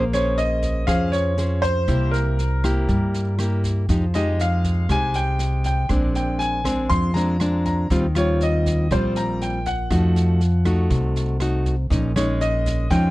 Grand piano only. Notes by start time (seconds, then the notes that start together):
0.14 C#5
0.38 D#5
0.87 F5
1.12 C#5
1.62 C5
2.11 A#4
4.15 D#5
4.41 F5
4.92 G#5
5.16 G5
5.66 G5
6.16 G5
6.39 G#5
6.90 C6
7.14 A#5
7.66 A#5
8.18 C#5
8.43 D#5
8.92 C5
9.17 A#5
9.42 G5
9.67 F#5
12.16 C#5
12.41 D#5
12.91 G5